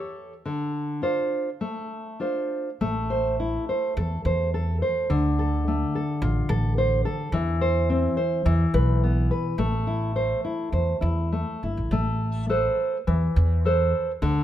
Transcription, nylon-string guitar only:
Already playing: G4 A4 C#5
0.46 D3
1.02 D4 F4 C5
1.61 A3
2.20 D4 F4 C5
2.81 A3
3.10 C5
3.40 E4
3.69 C5
3.98 A4
4.26 C5
4.54 A4
4.82 C5
5.10 D3
5.39 A4
5.68 A3
5.95 A4
6.22 F4
6.50 A4
6.78 C5
7.05 A4
7.33 E3
7.61 C5
7.90 C4
8.17 C5
8.45 E3
8.74 B4
9.03 B3
9.31 B4
9.58 A3
9.87 E4
10.16 C5
10.45 E4
10.73 C5
11.01 E4
11.32 A3
11.64 E4
11.92 A3
12.49 A4 B4 C5
13.07 E3
13.65 A4 B4 C5
14.22 D3

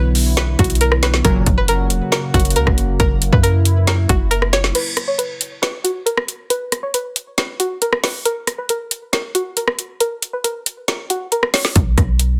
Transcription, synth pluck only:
Already playing: B4
0.37 B4
0.59 F#4
0.81 A#4
1.03 B4
1.25 A#4
1.58 B4
1.69 A#4
2.12 A#4
2.34 F#4
2.56 A#4
3.00 A#4
3.32 B4
3.43 A#4
3.88 A#4
4.09 F#4
4.31 A#4
4.53 C#5
4.75 B4
5.08 C#5
5.18 B4
5.62 B4
5.84 F#4
6.06 A#4
6.50 B4
6.83 C#5
6.94 B4
7.38 B4
7.60 F#4
7.82 A#4
8.03 B4
8.25 A#4
8.58 B4
8.70 A#4
9.13 A#4
9.35 F#4
9.57 A#4
10.00 A#4
10.33 B4
10.44 A#4
10.88 A#4
11.10 F#4
11.32 A#4
11.54 C#5

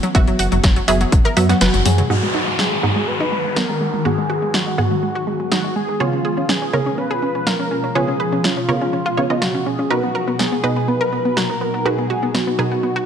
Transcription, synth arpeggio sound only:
0.03 F#3
0.15 F#4
0.28 F#3
0.39 F#4
0.52 F#3
0.64 F#3
0.76 F#3
0.88 G#4
1.01 F#3
1.12 F#3
1.25 A#4
1.37 F#3
1.50 F#3
1.61 B4
1.74 F#3
1.86 F#3
1.98 F#3
2.10 D#4
2.23 G#3
2.34 D#4
2.47 G#3
2.59 G#3
2.72 G#3
2.83 D#4
2.96 G#3
3.08 G#3
3.20 D#4
3.32 G#3
3.45 G#3
3.56 B3
3.69 G#3
3.81 G#3
3.94 G#3
4.05 F#4
4.18 G#3
4.30 F#4
4.42 G#3
4.54 G#3
4.67 G#3
4.78 G#4
4.91 G#3
5.03 G#3
5.15 F#4
5.27 G#3
5.40 G#3
5.51 D#4
5.64 G#3
5.76 G#3
5.89 G#3
6.00 G#4
6.13 C#4
6.25 G#4
6.37 C#4
6.49 C#4
6.62 C#4
6.73 A#4
6.86 C#4
6.98 C#4
7.11 G#4
7.22 C#4
7.35 C#4
7.47 F4
7.59 C#4
7.71 C#4
7.84 C#4
7.95 B4
8.08 C#4
8.20 B4
8.33 C#4
8.44 C#4
8.57 C#4
8.69 A#4
8.81 C#4
8.93 C#4
9.06 F4
9.17 C#4
9.30 C#4
9.42 F4
9.54 C#4
9.66 C#4
9.79 C#4
9.90 A#4
10.03 B3
10.15 A#4
10.28 B3
10.39 B3
10.52 B3
10.64 B4
10.76 B3
10.88 B3
11.01 A#4
11.12 B3
11.25 B3
11.37 F#4
11.49 B3
11.61 B3
11.74 B3
11.86 F#4
11.98 B3
12.10 F#4
12.23 B3
12.34 B3
12.47 B3
12.59 G#4
12.72 B3
12.83 B3
12.96 F#4

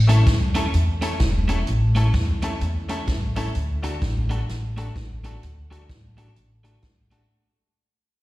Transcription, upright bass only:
Already playing: A1
0.27 E2
0.74 E2
1.21 E1
1.68 A1
2.14 E2
2.61 E2
3.08 A1
3.55 D2
4.03 A1
4.50 A1
4.96 A1
5.43 D2
5.90 A1
6.36 A1
6.83 A1

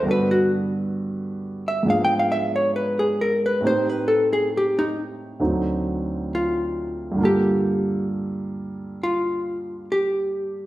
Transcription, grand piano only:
0.03 G2 D3 B3
0.07 F#4 A4
1.83 G#2 F3 B3 D4
1.88 G#4
3.61 A2 A3 C4 D#4
3.65 G4
5.40 D2 D3 F#3 C4 D#4
7.12 G2 D3
7.18 A#3 F4
7.23 A4

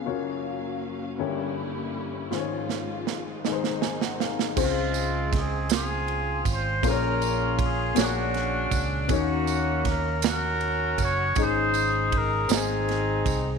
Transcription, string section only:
Already playing: F5
0.06 F#3 A#3 C#4
1.20 G3 A#3 E4
2.31 G#2 F3 G#3 F4
3.47 D#3 C4 D#4

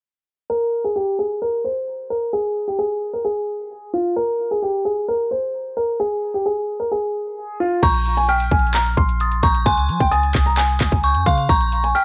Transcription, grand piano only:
0.50 A#4
0.84 G#4
0.96 G4
1.19 G#4
1.42 A#4
1.64 C5
2.10 A#4
2.33 G#4
2.68 G4
2.79 G#4
3.13 A#4
3.25 G#4
3.94 F4
4.16 A#4
4.51 G#4
4.62 G4
4.85 G#4
5.08 A#4
5.31 C5
5.77 A#4
6.00 G#4
6.34 G4
6.46 G#4
6.80 A#4
6.91 G#4
7.60 F4
7.83 A#5
8.17 G#5
8.29 G5
8.52 G#5
8.75 A#5
8.97 C6
9.43 A#5
9.66 G#5
10.00 G5
10.12 G#5
10.46 A#5
10.57 G#5
11.26 F5
11.49 A#5
11.84 G#5
11.95 G5

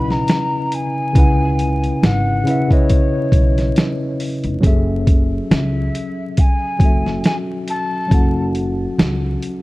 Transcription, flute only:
Already playing: B5
0.11 A#5
0.74 G#5
2.04 F#5
2.72 C#5
5.52 E5
6.39 G#5
7.26 G#5
7.69 A5

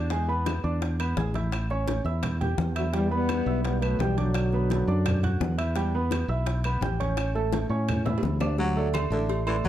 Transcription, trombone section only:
2.78 D3 F#3
2.96 E3 G3
3.12 G3 B3
3.65 G3 B3
3.83 F#3 A3
4.00 E3 G3
4.19 D3 F#3

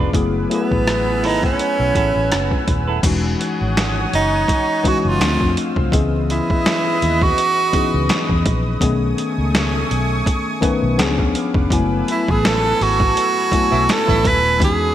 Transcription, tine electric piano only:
Already playing: F3 B3 C#4 D4 G#4
0.12 F#3 A3 B3 E4 G#4
0.49 F#3 A3 B3 E4 G#4
3.03 E3 G#3 C#4 D#4 F#4
4.83 E3 G#3 C#4 D#4 F#4
5.19 F3 A3 C4 D4 F4
5.91 E3 B3 C#4 G#4 D#5
7.72 E3 B3 C#4 D#4 G#4
8.80 D#3 A3 B3 C#4 G#4
10.61 D#3 A3 B3 C#4 B4
10.98 F3 B3 C#4 D4 G#4
11.70 F#3 G#3 B3 E4 G#5
11.78 A3
13.51 F#3 A3 B3 E4 G#5
14.59 E3 G#3 C#4 D#4 F#4

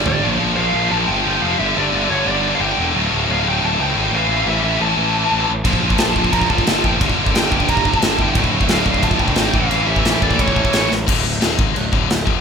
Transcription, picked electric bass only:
Already playing: G1
0.24 A#1
0.41 A#1
0.58 A#1
0.74 A#1
0.92 A#1
1.09 G1
1.25 G1
1.42 F1
1.59 G1
1.77 G1
1.93 G1
2.10 G1
2.26 G1
2.60 G1
2.78 E1
2.94 D1
3.12 D1
3.30 D1
3.46 D1
3.62 D1
3.79 C#2
3.95 G#1
4.11 A1
4.28 A1
4.46 A1
4.63 A1
4.80 A1
4.97 A1
5.32 A1
5.50 A1
5.65 A#1
5.83 A#1
6.01 A#1
6.16 A#1
6.33 A#1
6.50 G1
6.67 G1
6.85 A1
7.01 G1
7.19 G1
7.36 G1
7.52 G1
7.69 G1
8.03 G1
8.19 G1
8.35 D1
8.52 D1
8.70 D1
8.86 D1
9.03 D1
9.20 C#2
9.35 G#1
9.54 A1
9.71 A1
9.87 A1
10.05 A1
10.22 A1
10.39 A1
10.73 A1
10.91 A1
11.08 D1
11.25 D1
11.42 D#1
11.58 G#1
11.76 D1
11.94 D1
12.11 D1
12.27 F1

